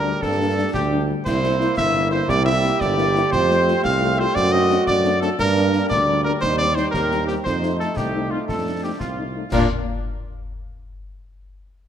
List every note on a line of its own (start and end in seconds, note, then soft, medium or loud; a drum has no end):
0.00 0.14 D2 medium
0.00 1.22 G3 medium
0.00 1.22 D4 medium
0.00 0.24 A#4 loud
0.05 0.11 G3 medium
0.05 0.11 D4 medium
0.05 0.23 D4 medium
0.21 0.65 G2 medium
0.21 0.38 C4 medium
0.21 0.70 A4 loud
0.21 0.73 A4 loud
0.21 concert bass drum medium
0.21 snare medium
0.39 0.46 G3 medium
0.39 0.55 A#3 medium
0.39 0.46 D4 medium
0.57 0.63 G3 medium
0.57 0.98 D4 medium
0.57 0.63 D4 medium
0.73 1.13 D2 loud
0.73 1.06 G4 loud
0.73 concert bass drum medium
0.73 snare medium
0.91 0.98 G3 medium
0.91 0.98 D4 medium
1.08 1.14 G3 medium
1.08 1.15 D4 medium
1.25 1.69 C2 loud
1.25 3.28 A#3 medium
1.25 1.74 E4 medium
1.25 3.28 E4 loud
1.25 1.73 C5 loud
1.25 1.74 C5 loud
1.25 concert bass drum medium
1.25 snare medium
1.25 crash medium
1.43 1.49 A#3 medium
1.43 1.49 C4 medium
1.43 1.49 E4 medium
1.43 snare medium
1.60 1.66 A#3 medium
1.60 1.66 C4 medium
1.60 1.66 E4 medium
1.60 snare medium
1.77 2.20 G1 medium
1.77 2.26 E4 loud
1.77 2.09 E5 loud
1.77 2.10 E5 loud
1.77 concert bass drum medium
1.77 snare medium
1.95 2.01 A#3 medium
1.95 2.01 C4 medium
1.95 2.01 E4 medium
2.11 2.18 A#3 medium
2.11 2.18 C4 medium
2.11 2.18 E4 medium
2.11 2.31 C5 loud
2.11 2.20 C5 loud
2.28 2.72 C2 loud
2.28 4.31 G4 loud
2.28 2.45 D5 loud
2.28 concert bass drum medium
2.28 snare medium
2.46 2.52 A#3 medium
2.46 2.52 C4 medium
2.46 2.52 E4 medium
2.46 2.80 E5 loud
2.46 2.82 E5 loud
2.63 2.69 A#3 medium
2.63 2.70 C4 medium
2.63 2.69 E4 medium
2.63 snare medium
2.80 3.24 G1 loud
2.80 3.32 D5 loud
2.80 concert bass drum medium
2.80 snare medium
2.97 3.04 A#3 medium
2.97 3.04 C4 medium
2.97 3.04 E4 medium
2.97 snare medium
3.14 3.21 A#3 medium
3.14 3.21 C4 medium
3.14 3.21 E4 medium
3.14 snare medium
3.32 3.75 F2 loud
3.32 5.22 A3 medium
3.32 5.22 C4 loud
3.32 3.84 C5 loud
3.32 3.80 C5 loud
3.32 concert bass drum medium
3.32 snare medium
3.49 3.55 A3 medium
3.49 3.55 C4 medium
3.49 3.55 F4 medium
3.49 snare medium
3.67 3.73 A3 medium
3.67 3.73 C4 medium
3.67 3.73 F4 medium
3.67 snare medium
3.84 4.27 C2 loud
3.84 4.18 F5 loud
3.84 4.21 F5 loud
3.84 concert bass drum medium
3.84 snare medium
4.01 4.07 A3 medium
4.01 4.08 C4 medium
4.01 4.08 F4 medium
4.18 4.25 A3 medium
4.18 4.25 C4 medium
4.18 4.25 F4 medium
4.18 4.35 C5 loud
4.18 4.36 C5 loud
4.35 4.79 F#2 loud
4.35 5.35 F#4 loud
4.35 4.43 D5 loud
4.35 4.54 D5 loud
4.35 concert bass drum medium
4.35 snare medium
4.52 4.59 A3 medium
4.52 4.58 C4 medium
4.52 4.58 D4 medium
4.52 4.84 D#5 loud
4.52 4.87 D#5 loud
4.69 4.76 A3 medium
4.69 4.76 C4 medium
4.69 4.76 D4 medium
4.69 snare medium
4.87 5.31 F#2 loud
4.87 5.19 D5 loud
4.87 concert bass drum medium
4.87 snare medium
5.04 5.10 A3 medium
5.04 5.10 C4 medium
5.04 5.10 D4 medium
5.04 snare medium
5.20 5.28 A3 medium
5.20 5.28 C4 medium
5.20 5.28 D4 medium
5.20 5.37 A4 medium
5.20 5.30 A4 loud
5.20 snare medium
5.39 5.82 G2 loud
5.39 7.41 G3 medium
5.39 6.42 A#3 medium
5.39 6.38 D4 loud
5.39 5.87 A#4 loud
5.39 5.87 A#4 medium
5.39 concert bass drum medium
5.39 snare medium
5.39 crash soft
5.55 5.62 G3 medium
5.55 5.62 A#3 medium
5.55 5.62 D4 medium
5.55 snare medium
5.73 5.80 G3 medium
5.73 5.80 A#3 medium
5.73 5.80 D4 medium
5.73 snare medium
5.89 6.34 D2 medium
5.89 6.22 D5 loud
5.89 6.23 D5 loud
5.89 concert bass drum medium
5.89 snare medium
6.09 6.15 G3 medium
6.09 6.15 A#3 medium
6.09 6.15 D4 medium
6.24 6.31 G3 medium
6.24 6.31 A#3 medium
6.24 6.31 D4 medium
6.24 6.32 A#4 loud
6.24 6.41 A#4 loud
6.41 6.86 D#2 loud
6.41 7.45 C4 medium
6.41 6.90 D#4 medium
6.41 6.57 C5 loud
6.41 6.60 C5 loud
6.41 concert bass drum medium
6.41 snare medium
6.58 6.65 G3 medium
6.58 6.65 C4 medium
6.58 6.66 D#4 medium
6.58 6.76 D5 loud
6.58 6.75 D5 loud
6.75 6.83 G3 medium
6.75 6.83 C4 medium
6.75 6.83 D#4 medium
6.75 6.90 C5 loud
6.75 6.85 C5 loud
6.75 snare medium
6.91 7.37 D#2 medium
6.91 7.42 G4 medium
6.91 7.24 A#4 loud
6.91 7.26 A#4 loud
6.91 concert bass drum medium
6.91 snare medium
7.11 7.18 G3 medium
7.11 7.18 C4 medium
7.11 7.18 D#4 medium
7.11 snare medium
7.27 7.35 G3 medium
7.27 7.35 C4 medium
7.27 7.35 D#4 medium
7.27 7.35 G4 loud
7.27 7.36 G4 medium
7.27 snare medium
7.44 7.89 F2 loud
7.44 9.31 A3 medium
7.44 9.31 D#4 medium
7.44 8.17 D#4 loud
7.44 7.76 C5 loud
7.44 7.77 C5 medium
7.44 concert bass drum medium
7.44 snare medium
7.63 7.69 A3 medium
7.63 7.69 C4 medium
7.63 7.69 D#4 medium
7.63 snare medium
7.79 7.87 A3 medium
7.79 7.87 C4 medium
7.79 7.87 D#4 medium
7.79 7.98 A4 loud
7.79 7.87 A4 medium
7.79 snare soft
7.97 8.37 C2 medium
7.97 8.32 G4 loud
7.97 8.29 G4 medium
7.97 concert bass drum medium
7.97 snare medium
8.14 8.21 A3 medium
8.14 8.21 C4 medium
8.14 8.20 D#4 medium
8.31 8.38 A3 medium
8.31 8.38 C4 medium
8.31 8.38 D#4 medium
8.31 8.39 F4 medium
8.31 8.47 F4 medium
8.48 8.92 F2 medium
8.48 8.97 D4 medium
8.48 8.80 A4 medium
8.48 8.81 A4 medium
8.48 concert bass drum medium
8.48 snare medium
8.66 8.72 A3 medium
8.66 8.72 C4 medium
8.66 8.72 D#4 medium
8.83 8.90 A3 medium
8.83 8.90 C4 medium
8.83 8.90 D#4 medium
8.83 8.91 G4 medium
8.83 9.01 G4 medium
8.99 9.44 C2 medium
8.99 9.24 C4 medium
8.99 9.37 F4 medium
8.99 9.48 F4 medium
8.99 concert bass drum medium
8.99 snare medium
9.18 9.24 A3 medium
9.18 9.24 C4 medium
9.18 9.24 D#4 medium
9.36 9.42 A3 medium
9.36 9.42 C4 medium
9.36 9.42 D#4 medium
9.52 9.67 A#2 loud
9.52 9.66 A#3 medium
9.52 9.67 A#3 medium
9.52 9.66 D4 medium
9.52 9.67 D4 medium
9.52 9.66 F4 medium
9.52 9.67 F4 medium
9.52 9.66 A#4 loud
9.52 concert bass drum loud
9.52 snare medium
9.52 crash medium